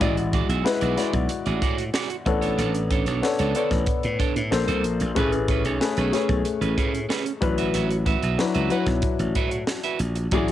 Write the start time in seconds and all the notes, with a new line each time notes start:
0.00 A1 G#3 E4 F#4 G#4 D5, kick, closed hi-hat
0.17 muted clean electric guitar stroke, closed hi-hat
0.33 F#4 G#4 D5, kick, closed hi-hat
0.49 B1 F#4 G#4 E5, closed hi-hat
0.64 G#3 E4 F#4 B4, muted clean electric guitar stroke, snare
0.81 B1 F#4 G#4 D5, closed hi-hat
0.97 G#3 E4 F#4 G#4 D5, snare, closed hi-hat
1.13 B1, muted clean electric guitar stroke, kick, closed hi-hat
1.29 muted clean electric guitar stroke, closed hi-hat
1.46 A1 F#4 G#4 D5, closed hi-hat
1.62 A2 F#4 G#4 D5, kick, closed hi-hat
1.78 muted clean electric guitar stroke, closed hi-hat
1.94 F#4 G#4 D5, snare
2.10 muted clean electric guitar stroke, closed hi-hat
2.26 A1 B3 D4 A4 C#5, muted clean electric guitar stroke, kick, closed hi-hat
2.42 D4 A4 C#5, closed hi-hat
2.58 A1 D4 A4 C#5, closed hi-hat
2.74 muted clean electric guitar stroke, closed hi-hat
2.91 D4 A4 C#5, kick, closed hi-hat
3.06 B1 D4 A4 C#5, closed hi-hat
3.22 B3 D4 A4 C#5, muted clean electric guitar stroke, snare
3.39 C#2 D4 A4 C#5, closed hi-hat
3.55 B3 D4 A4 C#5 D5, closed hi-hat
3.71 A1, muted clean electric guitar stroke, kick, snare, closed hi-hat
3.87 kick, closed hi-hat
4.03 A2, muted clean electric guitar stroke, closed hi-hat
4.19 D4 A4 C#5, kick, closed hi-hat
4.36 A2, muted clean electric guitar stroke, closed hi-hat
4.51 A#1 A#3 D4 A4 C5, muted clean electric guitar stroke, snare
4.68 C2 D4 A4 C5, closed hi-hat
4.84 A#1, muted clean electric guitar stroke, closed hi-hat
5.00 A#1, muted clean electric guitar stroke, closed hi-hat
5.14 A1 A3 C#4 G#4 B4, kick, closed hi-hat
5.32 muted clean electric guitar stroke, closed hi-hat
5.48 C#4 G#4 B4, kick, closed hi-hat
5.65 B1 C#4 G#4 C#5, closed hi-hat
5.80 A3 C#4 G#4 B4, muted clean electric guitar stroke, snare
5.97 B1 C#4 G#4 B4, closed hi-hat
6.12 A3 C#4 G#4 B4 C#5, snare, closed hi-hat
6.29 B1, muted clean electric guitar stroke, kick, closed hi-hat
6.45 muted clean electric guitar stroke, closed hi-hat
6.61 A1 C#4 G#4 B4, closed hi-hat
6.78 A2 C#4 G#4 B4, kick, closed hi-hat
6.94 muted clean electric guitar stroke, closed hi-hat
7.09 C#4 G#4 B4, snare
7.26 muted clean electric guitar stroke, closed hi-hat
7.41 A1 F#3 D4 E4 B4, muted clean electric guitar stroke, kick, closed hi-hat
7.58 F#4 B4 E5, closed hi-hat
7.74 A1 F#4 B4 E5, closed hi-hat
7.91 muted clean electric guitar stroke, closed hi-hat
8.06 F#4 B4 E5, kick, closed hi-hat
8.22 B1 F#4 B4 E5, closed hi-hat
8.38 F#3 D4 E4 B4, muted clean electric guitar stroke, snare
8.55 C#2 F#4 B4 E5, closed hi-hat
8.69 F#3 D4 E4 F#4 B4 F#5, closed hi-hat
8.86 B1, muted clean electric guitar stroke, kick, snare, closed hi-hat
9.02 kick, closed hi-hat
9.19 A1, muted clean electric guitar stroke, closed hi-hat
9.35 A2 F#4 B4 E5, kick, closed hi-hat
9.51 muted clean electric guitar stroke, closed hi-hat
9.67 muted clean electric guitar stroke, snare
9.83 F#4 B4 E5, closed hi-hat
9.99 A#1, muted clean electric guitar stroke, closed hi-hat
10.16 muted clean electric guitar stroke, closed hi-hat
10.31 A1 F#3 D4 E4 F#4 G#4 D5, kick, closed hi-hat
10.48 muted clean electric guitar stroke, closed hi-hat